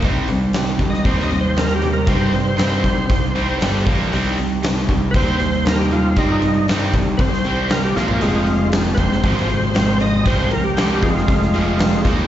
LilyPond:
<<
  \new Staff \with { instrumentName = "Tonewheel organ" } { \time 4/4 \key c \minor \tempo 4 = 117 r4 \tuplet 3/2 { r4 ees''8 c''8 ees''8 c''8 bes'8 g'8 bes'8 } | c''2. r4 | r2 <b' c''>4 bes'16 g'16 f'8 | ees'4 r4 <b' c''>4 bes'16 g'16 f'8 |
<aes f'>4 r8 <b' c''>2 ees''8 | c''8 bes'16 g'8. <aes f'>2 r8 | }
  \new Staff \with { instrumentName = "Steel-string acoustic guitar" } { \time 4/4 \key c \minor <c g c' ees' g' c''>8 <c' ees' g' c''>8 <c g c' ees' g' c''>8 <c' ees' g' c''>8 <c' ees' g' c''>4 <c g c' ees' g' c''>8 <c' ees' g' c''>8 | <c g c' ees' g' c''>8 <c' ees' g' c''>8 <c g c' ees' g' c''>8 <c' ees' g' c''>8 <c' ees' g' c''>4 <g d' g' d''>8 <bes f' bes'>8 | <c ees c' ees' g'>8 <c' ees' g'>8 <c ees c' ees' g'>8 <c' ees' g'>8 <ees c' ees' g'>4 <c ees c' ees' g'>8 <c' ees' g'>8 | <c ees c' ees' g'>8 <c' ees' g'>8 <c ees c' ees' g'>8 <c' ees' g'>8 <ees c' ees' g'>4 <c ees c' ees' g'>8 <bes f' bes'>8 |
<f, c f aes c' g'>8 <f aes c' g'>8 <f, c f aes c' g'>8 <f aes c' g'>8 <f aes c' g'>4 <f, c f aes c' g'>8 <f aes c' g'>8 | <f, c f aes c' g'>8 <f aes c' g'>8 <f, c f aes c' g'>8 <f aes c' g'>8 <f aes c' g'>4 <f, c f aes c' g'>8 <bes ees' g'>8 | }
  \new Staff \with { instrumentName = "Distorted electric guitar" } { \clef bass \time 4/4 \key c \minor <c g c'>8 <c g>8 <c g>8 <c g>8 <c g c'>8 <c g>8 <c g>8 <c g>8 | <c g c'>8 <c g>8 <c g c'>8 <c g>8 <c g>8 <c g c'>8 <g d' g'>8 <bes, f bes>8 | <c g c'>8 <c g>8 <c g>8 <c g>8 <c g c'>8 <c g>8 <c g>8 <c g>8 | <c g c'>8 <c g>8 <c g c'>8 <c g>8 <c g>8 <c g c'>8 <c g>8 <bes, f bes>8 |
<f aes c'>8 <f aes>8 <f aes>8 <f aes>8 <f aes c'>8 <f aes>8 <f aes>8 <f aes>8 | <f aes c'>8 <f aes>8 <f aes c'>8 <f aes>8 <f aes>8 <f aes c'>8 <f aes>8 <ees g bes>8 | }
  \new Staff \with { instrumentName = "Distorted electric guitar" } { \clef bass \time 4/4 \key c \minor <c g c'>8 <c g>8 <c g>8 <c g>8 <c g c'>8 <c g>8 <c g>8 <c g>8 | <c g c'>8 <c g>8 <c g c'>8 <c g>8 <c g>8 <c g c'>8 <g, d g>8 <bes, f bes>8 | <c g c'>8 <c g>8 <c g>8 <c g>8 <c g c'>8 <c g>8 <c g>8 <c g>8 | <c g c'>8 <c g>8 <c g c'>8 <c g>8 <c g>8 <c g c'>8 <c g>8 <bes, f bes>8 |
<f, c f>8 <f, c>8 <f, c>8 <f, c>8 <f, c f>8 <f, c>8 <f, c>8 <f, c>8 | <f, c f>8 <f, c>8 <f, c f>8 <f, c>8 <f, c>8 <f, c f>8 <f, c>8 <ees bes ees'>8 | }
  \new Staff \with { instrumentName = "Fingered electric bass" } { \clef bass \time 4/4 \key c \minor c,4. c,8 ees,2 | g,4. c,8 c,4 g,,8 bes,,8 | c,4. c,8 ees,2 | g,4. c,8 c,4. bes,,8 |
f,,4. f,,8 aes,,2 | c,4. f,,8 f,,4. ees,8 | }
  \new DrumStaff \with { instrumentName = "Drums" } \drummode { \time 4/4 <hho bd>8 hho8 <hho sn>8 <hho bd>16 sn16 <hho bd>16 sn16 hho8 <hho sn>8 hho8 | <hho bd>8 hho8 <hho sn>8 <hho bd>8 <hho bd>8 hho8 <hho sn>8 <hho bd>8 | hho8 hho8 <hho sn>8 <hho bd>8 <hho bd>8 hho8 <hho sn>8 hho8 | <hho bd>8 hho8 <hho sn>8 <hho bd>8 <hho bd>16 sn16 hho8 <hho sn>8 sn16 tomfh16 |
hho8 hho8 <hho sn>8 <hho bd>16 sn16 <hho bd>16 sn16 hho8 <hho sn>8 hho8 | <hho bd>8 hho8 <hho sn>8 <hho bd>16 sn16 <hho bd>16 sn16 hho8 <hho sn>8 <hho bd>8 | }
>>